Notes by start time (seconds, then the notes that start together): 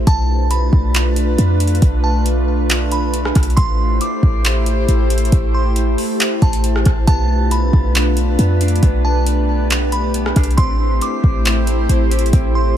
0.07 B1 A3 D4 F4 B4 A5, kick, closed hi-hat
0.51 B5, closed hi-hat
0.73 B1, kick
0.94 clap, closed hi-hat
1.16 closed hi-hat
1.38 F2, closed hi-hat
1.60 closed hi-hat
1.68 closed hi-hat
1.75 closed hi-hat
1.82 B1, kick, closed hi-hat
2.04 A5
2.26 closed hi-hat
2.70 clap, closed hi-hat
2.92 B5, closed hi-hat
3.14 closed hi-hat
3.25 cross-stick
3.35 B1, kick, cross-stick, closed hi-hat
3.43 closed hi-hat
3.50 closed hi-hat
3.57 A1 E4 G4 C5 C6, kick, closed hi-hat
4.01 D6, closed hi-hat
4.23 A1, kick
4.45 clap, closed hi-hat
4.66 closed hi-hat
4.88 A1, closed hi-hat
5.10 closed hi-hat
5.18 closed hi-hat
5.25 closed hi-hat
5.32 A1, kick, closed hi-hat
5.54 C6
5.76 closed hi-hat
5.98 open hi-hat
6.20 clap, closed hi-hat
6.42 A1 A5, kick, closed hi-hat
6.53 closed hi-hat
6.64 closed hi-hat
6.76 cross-stick
6.86 A1, kick, cross-stick, closed hi-hat
7.07 B1 B3 D4 F4 B4 A5, kick, closed hi-hat
7.29 B3
7.51 B5, closed hi-hat
7.73 B1, kick
7.95 B3, clap, closed hi-hat
8.17 closed hi-hat
8.39 F2 B3, closed hi-hat
8.61 D4, closed hi-hat
8.68 closed hi-hat
8.76 closed hi-hat
8.83 B1 B3 G4, kick, closed hi-hat
9.05 B3 A5
9.27 closed hi-hat
9.70 B3, clap, closed hi-hat
9.92 B5, closed hi-hat
10.14 B3, closed hi-hat
10.26 cross-stick
10.36 B1 D4, kick, cross-stick, closed hi-hat
10.43 closed hi-hat
10.51 closed hi-hat
10.57 A1 A3 C4 E4 C5 C6, kick, closed hi-hat
10.80 C4
11.01 D6, closed hi-hat
11.24 A1, kick
11.45 C4, clap, closed hi-hat
11.67 closed hi-hat
11.89 A1 C4, closed hi-hat
12.11 G4, closed hi-hat
12.19 closed hi-hat
12.26 closed hi-hat
12.33 A1 C4, kick, closed hi-hat
12.55 C4 C6